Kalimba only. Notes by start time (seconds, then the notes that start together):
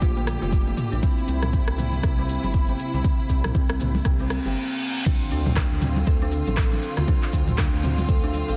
0.02 F4
0.16 A#3
0.42 F4
0.67 A#3
0.92 D4
1.03 C4
1.28 C4
1.53 C4
1.78 A#3
2.04 G4
2.19 C4
2.43 G4
2.69 C4
2.94 E4
3.04 C4
3.30 C4
3.55 C4
3.80 A#3
4.06 G4
4.20 C4
4.46 G4
5.06 D4
5.32 D4
5.57 D4
5.82 C4
6.07 A4
6.22 D4
6.47 A4
6.73 D4
6.98 F4
7.08 D4
7.33 D4
7.58 D4
7.83 C4
8.09 A4
8.24 D4
8.49 A4